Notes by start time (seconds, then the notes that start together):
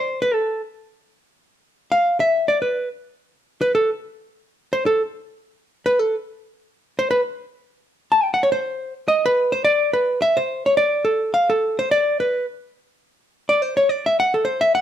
Already playing: C5
0.22 B4
0.34 A4
1.92 F5
2.20 E5
2.48 D5
2.62 B4
3.61 B4
3.75 A4
4.73 C5
4.86 A4
5.86 B4
5.99 A4
6.99 C5
7.11 B4
8.12 A5
8.23 G5
8.34 F#5
8.43 C#5
8.52 C5
9.08 D#5
9.26 B4
9.52 C5
9.65 D5
9.93 B4
10.22 E5
10.37 C5
10.66 C#5
10.77 D5
11.05 A4
11.34 F5
11.50 A4
11.79 C5
11.91 D5
12.20 B4
13.49 D5
13.62 C5
13.77 C#5
13.89 D5
14.06 E5
14.20 F#5
14.34 A4
14.45 C5
14.61 E5
14.75 F#5